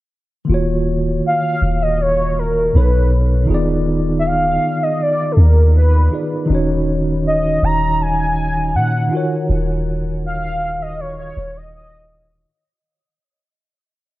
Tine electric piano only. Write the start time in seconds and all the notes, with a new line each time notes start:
0.45 D#3 A#3
0.50 F4 F#4
0.54 C#5
2.73 B2 B3 D#4 A4
2.77 C#5
3.45 D#3 D#4 F4
3.51 B3 G#4 D5
6.10 D#3 D#4 F4 G#4 B4
6.15 D5
6.45 D#3 D#4
6.50 C#4 F#4
6.54 C#5
9.08 D#3 D#4 F4
9.13 F#4 A#4 C#5